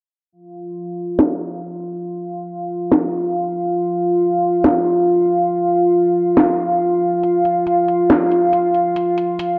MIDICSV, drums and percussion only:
0, 0, Header, 1, 2, 480
1, 0, Start_track
1, 0, Tempo, 431655
1, 365, Time_signature, 4, 2, 24, 8
1, 10661, End_track
2, 0, Start_track
2, 0, Title_t, "Drums"
2, 1321, Note_on_c, 9, 38, 103
2, 1432, Note_off_c, 9, 38, 0
2, 3243, Note_on_c, 9, 38, 104
2, 3354, Note_off_c, 9, 38, 0
2, 5162, Note_on_c, 9, 38, 106
2, 5273, Note_off_c, 9, 38, 0
2, 7083, Note_on_c, 9, 38, 108
2, 7194, Note_off_c, 9, 38, 0
2, 8044, Note_on_c, 9, 42, 72
2, 8156, Note_off_c, 9, 42, 0
2, 8285, Note_on_c, 9, 42, 48
2, 8396, Note_off_c, 9, 42, 0
2, 8525, Note_on_c, 9, 42, 70
2, 8637, Note_off_c, 9, 42, 0
2, 8766, Note_on_c, 9, 42, 48
2, 8877, Note_off_c, 9, 42, 0
2, 9005, Note_on_c, 9, 38, 107
2, 9005, Note_on_c, 9, 42, 68
2, 9116, Note_off_c, 9, 38, 0
2, 9116, Note_off_c, 9, 42, 0
2, 9246, Note_on_c, 9, 42, 43
2, 9357, Note_off_c, 9, 42, 0
2, 9485, Note_on_c, 9, 42, 71
2, 9596, Note_off_c, 9, 42, 0
2, 9724, Note_on_c, 9, 42, 46
2, 9835, Note_off_c, 9, 42, 0
2, 9965, Note_on_c, 9, 42, 75
2, 10076, Note_off_c, 9, 42, 0
2, 10205, Note_on_c, 9, 42, 49
2, 10316, Note_off_c, 9, 42, 0
2, 10444, Note_on_c, 9, 42, 77
2, 10556, Note_off_c, 9, 42, 0
2, 10661, End_track
0, 0, End_of_file